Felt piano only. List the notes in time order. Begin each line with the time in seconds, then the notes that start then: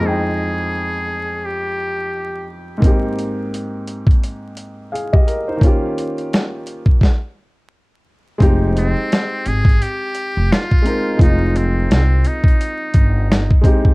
0.00 F2 G#3 C4
0.06 D#4 G5
2.78 G#2 A#3
2.82 C4 D#4
2.87 G4
4.92 G#4 F5
5.13 G4 D#5
5.27 A#4
5.48 D#4 C5
5.57 D#3 A#3
5.62 C#4 F4
5.66 G4
8.38 G#3 C4 D#4
8.43 G4
10.82 G#3 C4 D#4
10.87 A#4
11.17 G#3 C4 D#4
11.22 F4
13.61 G#3 C4 D#4
13.66 G4